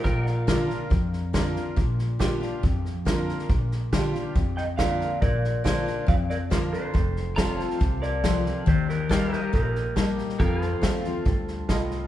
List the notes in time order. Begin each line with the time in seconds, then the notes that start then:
Already playing: F4 A#4
0.04 A#1 A#2 A#4 D#5 G5, kick, snare
0.25 D5, snare
0.32 F5
0.47 D3 A#3 D4 F4 A#4, kick, snare, hi-hat pedal
0.68 D4 F4, snare
0.90 F2, kick, snare
1.13 snare
1.33 D3 A#3 D4 F4 A#4, kick, snare, hi-hat pedal
1.54 D4 F4, snare
1.76 A#1 A#2, kick, snare
1.99 snare
2.19 D3 A#3 D4 F4 G4, kick, snare, hi-hat pedal
2.40 D4 F4, snare
2.63 F2, kick, snare
2.85 snare
3.05 D3 A#3 D4 F4 A#4, kick, snare, hi-hat pedal
3.29 snare
3.39 snare
3.49 A#1 A#2, kick, snare
3.71 snare
3.92 D3 A#3 D4 F4 G4, kick, snare, hi-hat pedal
4.14 D4 F4, snare
4.35 F2, kick, snare
4.57 D#5 G5, snare
4.77 D3 A#3 D4 F4 A#4 D5 F5, kick, snare, hi-hat pedal
5.01 snare
5.22 A#1 A#2 A#4 D5, kick, snare
5.44 snare
5.64 D3 A#3 D4 F4 A#4 C5 D5, kick, snare, hi-hat pedal
5.86 D4 F4, snare
6.07 F2 D5 F5, kick, snare
6.30 A#4 D5, snare
6.50 D3 A#3 D4 F4 A#4 C5, kick, snare, hi-hat pedal
6.72 D4 F4 A4 C5, snare
6.94 F1 F2, kick, snare
7.16 snare
7.36 F3 A3 C4 F4 A4 D5 F5 A#5, kick, snare, hi-hat pedal
7.56 A5, snare
7.62 C5
7.70 snare
7.81 C2 C3, kick, snare
8.02 A#4 D5, snare
8.24 F3 A3 C4 F4 A4, kick, snare, hi-hat pedal
8.45 C4 F4, snare
8.66 D#2 D#3 G4 C5, kick, snare
8.89 G4 A#4, snare
9.09 G3 A#3 D#4 G4 A4 A#4 C5 F5, kick, snare, hi-hat pedal
9.32 G4 A#4, snare
9.37 A#4 D#5
9.53 A#1 A#2 G4 A#4, kick, snare
9.75 snare
9.96 G3 A#3 D#4 G4 A5, kick, snare, hi-hat pedal
10.18 snare
10.29 snare
10.39 F2 F4 G4 A4 A#4 F5, kick, snare
10.62 A4, snare
10.66 C5
10.81 D#2 F3 A3 C4 F4 A4 C5, kick, snare, hi-hat pedal
11.04 C4 F4, snare
11.25 D2 G2, kick, snare
11.48 snare
11.68 C2 A2 F4 A4 D#5, kick, snare, hi-hat pedal
11.91 snare